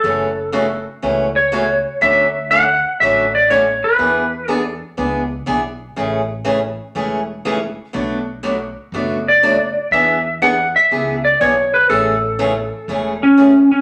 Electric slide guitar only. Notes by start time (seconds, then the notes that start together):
Already playing: A4
1.36 C#5
2.02 E5
2.51 F#5
3.00 E5
3.35 D5
3.50 C#5
3.84 B4
4.51 A4
9.28 D5
9.92 E5
10.42 F#5
10.76 E5
11.25 D5
11.41 C#5
11.74 B4
11.90 A4
13.23 C#4
13.72 C#4